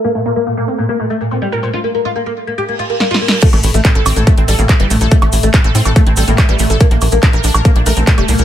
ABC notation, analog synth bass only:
X:1
M:4/4
L:1/16
Q:1/4=142
K:Gdor
V:1 name="Analog synth bass" clef=bass
z16 | z16 | z A,,, A,,, A,,, z A,,, A,,, A,,, z A,,, A,,, A,,, z G,,, B,,, B,,, | z A,,, A,,, A,,, z A,,, A,, A,,, z A,,, A,,, A,,, z A,,, A,,, A,,, |
z B,,, B,,, B,,, z B,,, B,,, B,,, z B,,, B,,, B,,, z F,,, C,, C,, |]